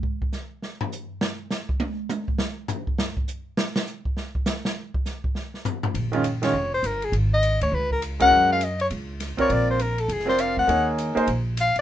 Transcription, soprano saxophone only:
X:1
M:4/4
L:1/8
Q:"Swing" 1/4=203
K:Bbm
V:1 name="Soprano saxophone"
z8 | z8 | z8 | z8 |
z8 | z3 d2 c B A | z e2 d _c B z g- | g f e d z3 d |
=d c B =A _A c f g- | g z4 z f =d |]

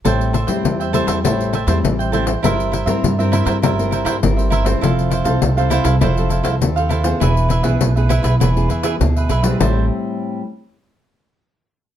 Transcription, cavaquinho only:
X:1
M:4/4
L:1/16
Q:1/4=100
K:Am
V:1 name="Cavaquinho"
[Aceg]2 [Aceg] [ceg]2 [ceg] [Aceg] [Aceg] [Aceg]2 [Aceg] [Aceg] z [ceg] [Aceg] [ceg] | [E_Bce]2 [EBce] [Bce]2 [Bce] [EBce] [EBce] [EBce]2 [EBce] [EBce] z [Bce] [EBce] [Bce] | [EAcf]2 [EAcf] [Acf]2 [Acf] [EAcf] [EAcf] [EAcf]2 [EAcf] [EAcf] z [Acf] [EAcf] [Acf] | [E^GBe]2 [EGBe] [GBe]2 [GBe] [EGBe] [EGBe] [EGBe]2 [EGBe] [EGBe] z [GBe] [EGBe] [GBe] |
[Aceg]2 z12 z2 |]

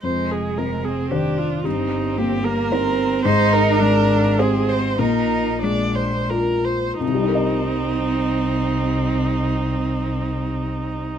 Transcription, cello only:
X:1
M:3/4
L:1/8
Q:1/4=97
K:Cm
V:1 name="Cello"
A,3 C D2 | C3 B, C2 | E2 D2 C2 | E2 D2 z2 |
C6- | C6 |]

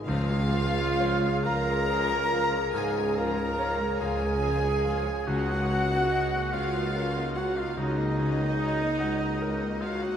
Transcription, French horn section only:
X:1
M:12/8
L:1/16
Q:3/8=48
K:Db
V:1 name="French horn section"
F6 B6 A2 B4 A6 | G6 F4 G F E8- E2 F G |]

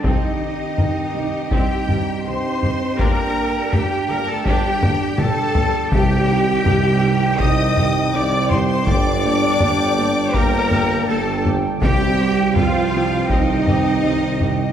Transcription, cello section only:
X:1
M:4/4
L:1/16
Q:1/4=82
K:Cdor
V:1 name="Cello section"
E8 G4 c4 | B4 G2 B A G4 A4 | G8 e4 d2 c c | d8 B4 A2 z2 |
G4 F4 E8 |]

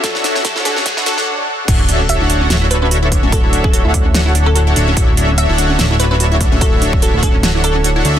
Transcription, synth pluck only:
X:1
M:4/4
L:1/16
Q:"Swing 16ths" 1/4=146
K:D
V:1 name="Synth pluck"
A z3 A z A z3 A2 z4 | z4 e z4 z B B z4 | A z2 A A z6 A A z3 | z4 e z4 z B B z4 |
A z3 A z A z3 A6 |]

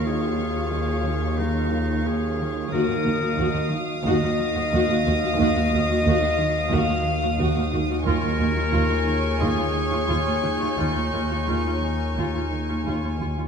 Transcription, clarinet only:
X:1
M:4/4
L:1/8
Q:1/4=89
K:Dbmix
V:1 name="Clarinet"
A4 E2 A2 | B3 z e4 | e4 f2 z2 | B4 A4 |
E6- E z |]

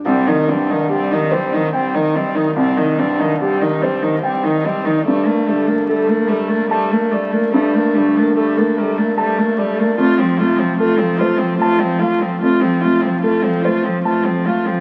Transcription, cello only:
X:1
M:6/8
L:1/16
Q:3/8=49
K:Cdor
V:1 name="Cello" clef=bass
G, E, G, E, G, E, G, E, G, E, G, E, | G, E, G, E, G, E, G, E, G, E, G, E, | G, A, G, A, G, A, G, A, G, A, G, A, | G, A, G, A, G, A, G, A, G, A, G, A, |
A, F, A, F, A, F, A, F, A, F, A, F, | A, F, A, F, A, F, A, F, A, F, A, F, |]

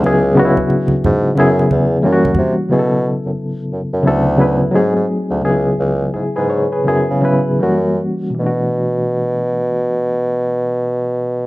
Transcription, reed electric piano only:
X:1
M:4/4
L:1/16
Q:"Swing 16ths" 1/4=86
K:Bdor
V:1 name="Reed electric piano"
z16 | z16 | z4 [EG] [GB] c [GB]2 z6 z | z16 |]
V:2 name="Reed electric piano"
[C,F,B,EG]2 [C,F,B,DEF]6 [C,F,B,EG]4 [E,=G,^A,C^EF]4 | [C,F,B,EGA]6 z2 [C,F,B,EA]2 [C,F,B,EB]2 [F,A,^B,^DG]4 | [C,F,B,DEG]6 z2 [C,F,B,EG]2 [C,F,B,EB]2 [E,=G,^A,CF]4 | [B,,E,A,DF]16 |]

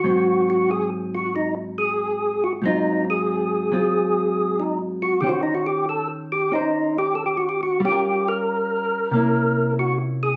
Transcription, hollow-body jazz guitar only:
X:1
M:4/4
L:1/8
Q:"Swing" 1/4=92
K:Ab
V:1 name="Hollow-body jazz guitar"
[A,,_G,C]8 | [A,,_G,CF]3 [G,CF]4- [G,CF] | [E,Dc]4 [Dc]4 | [G,DFB]4 [C,B,D=E]4 |]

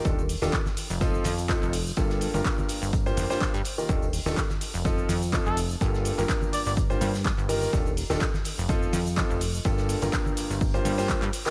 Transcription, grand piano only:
X:1
M:4/4
L:1/16
Q:"Swing 16ths" 1/4=125
K:Gm
V:1 name="Grand piano"
[E,DFGA] z2 [E,DFGA] z4 [F,CEFA]2 z2 [F,CEFA]2 z2 | [G,,B,FGA]3 [G,,B,FGB]6 [G,,B,FGc]2 [G,,B,FGc]2 z2 [E,B,FGB] | [E,DFGA] z2 [E,DFGA] z4 [F,CEFA]2 z2 [F,CEFA]2 z2 | [G,,B,FGA]3 [G,,B,FGB]6 [G,,B,FGc]2 z3 [E,B,FGB]2 |
[E,DFGA] z2 [E,DFGA] z4 [F,CEFA]2 z2 [F,CEFA]2 z2 | [G,,B,FGA]3 [G,,B,FGB]6 [G,,B,FGc]2 [G,,B,FGc]2 z2 [E,B,FGB] |]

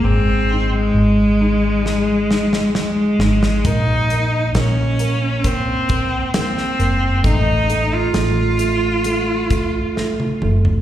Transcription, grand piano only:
X:1
M:4/4
L:1/8
Q:1/4=67
K:Abmix
V:1 name="Grand piano"
A, E A, E A, E A, E | B, B, B, B, B, B, B, B, | =A, A, A, A, A, A, A, A, |]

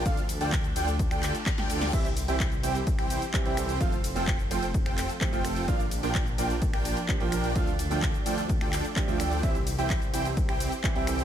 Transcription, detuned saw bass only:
X:1
M:4/4
L:1/16
Q:1/4=128
K:Dm
V:1 name="Detuned saw bass" clef=bass
D,,3 D,,3 D,,3 D,,2 z2 D,,3 | z3 C,,3 C,,3 C,,2 z2 C,,3 | F,,,3 F,,,3 F,,,3 F,,,2 z2 F,,,3 | B,,,3 B,,,3 B,,,3 B,,,2 z2 B,,,3 |
z3 D,,3 D,,3 D,,2 z2 D,,3 | z3 C,,3 C,,3 C,,2 z2 C,,3 |]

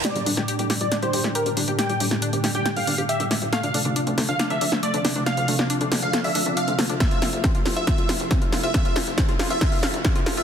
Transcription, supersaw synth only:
X:1
M:4/4
L:1/16
Q:1/4=138
K:Gdor
V:1 name="Supersaw synth"
d2 z4 z d z c2 z B z3 | g2 z4 z g z f2 z e z3 | f2 z4 z f z e2 z d z3 | f2 z4 z f z e2 z f z3 |
e2 z4 z e e2 z4 z e | e2 z4 z e e2 z4 z e |]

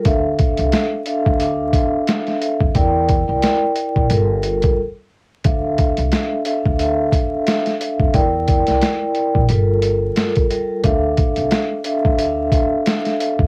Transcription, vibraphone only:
X:1
M:4/4
L:1/16
Q:"Swing 16ths" 1/4=89
K:Dm
V:1 name="Vibraphone"
[DAef]6 [DAef]2 [DAef]6 [DAef]2 | [EBdg]3 [EBdg]4- [EBdg] [G,FAB]4 z4 | [DAef]6 [DAef]2 [DAef]6 [DAef]2 | [EBdg]3 [EBdg]4- [EBdg] [G,FAB]6 [G,FAB]2 |
[DAef]6 [DAef]2 [DAef]6 [DAef]2 |]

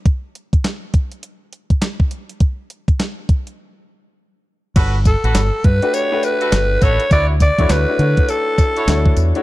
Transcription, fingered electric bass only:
X:1
M:4/4
L:1/16
Q:"Swing 16ths" 1/4=102
K:Glyd
V:1 name="Fingered electric bass" clef=bass
z16 | z16 | G,,,3 A,,, G,,, z G,, z4 z G,,,2 A,,, z | D,,3 E,, D,, z D, z4 z D,,2 E,, z |]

